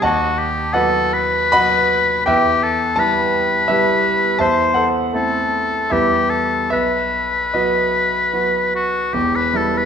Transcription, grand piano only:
0.02 D#2 D#5 F#5 A5
0.73 F#3 B3 F#4 B4 D#5 F#5
1.52 F#3 B3 F#4 D#5 F#5 B5
2.26 E2 B4 E5 G5
2.96 G3 B3 E4 A5
3.68 G3 B3 E4 G4 B4 E5
4.39 E2 C5 E5 A5
4.74 A4 C5 F#5
5.13 A3 C4 E4
5.90 E2 G3 B3 E4 G4 B4 E5
6.70 B1 B4 E5
7.54 F#3 B3 F#4 B4 D#5
8.33 F#3 B3 F#4
9.13 E1 E2
9.53 G3 B3 E4

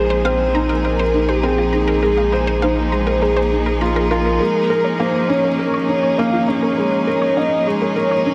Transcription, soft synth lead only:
Already playing: G#4
0.26 C5
0.85 A#4
1.29 G4
1.44 G#4
1.74 G#4
2.63 C5
3.22 G#4
4.11 A#4
5.00 C5
5.29 C#5
6.18 F5
6.48 C#5
7.37 D#5
7.67 C#5

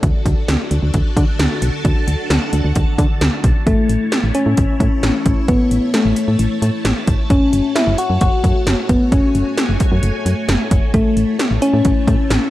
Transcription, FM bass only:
0.03 D2
0.26 D2
0.48 D2
0.71 D2
0.82 D2
0.94 D2
1.17 D3
1.39 D2
1.62 B1
1.85 D2
2.08 D2
2.30 D2
2.53 D2
2.64 D2
2.76 D2
2.98 D3
3.21 D2
3.44 B1
3.67 A1
3.89 A1
4.23 A1
4.46 A2
4.58 A1
4.80 A2
5.03 A1
5.26 A1
5.48 A1
5.71 A1
6.05 A1
6.28 A2
6.39 A1
6.62 A2
6.85 A1
7.08 A1
7.30 F#1
7.53 F#1
7.87 F#1
8.10 F#2
8.21 F#1
8.44 F#2
8.67 F#1
8.89 F#1
9.12 F#1
9.35 F#1
9.69 F#1
9.92 F#2
10.03 F#1
10.26 F#2
10.48 F#1
10.71 F#1
10.94 A1
11.17 A1
11.51 A1
11.73 A2
11.85 A1
12.08 A2
12.30 A1

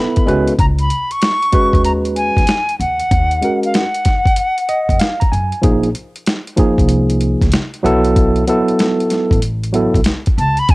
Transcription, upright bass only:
0.27 C#2
0.59 C#2
1.73 D#2
2.37 E2
2.80 D#2
3.11 D#2
4.89 F2
5.32 F#2
5.64 A#1
6.78 C2
7.41 C#2
7.84 B1
9.31 A1
9.94 B1
10.38 C#2
10.69 C#2

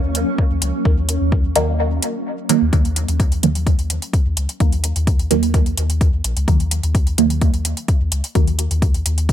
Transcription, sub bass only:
Already playing: D#2
0.51 D#2
0.62 C#2
0.85 D#2
1.21 D#2
1.56 D#2
2.62 D#2
3.08 D#2
3.43 D#2
4.26 D#2
4.37 C#2
4.60 D#2
4.96 D#2
5.31 D#2
5.78 D#2
6.24 A#1
6.36 C#2
6.48 D#2
6.83 D#2
7.18 D#2
8.01 D#2
8.12 C#2
8.35 D#2
8.71 D#2
9.06 D#2

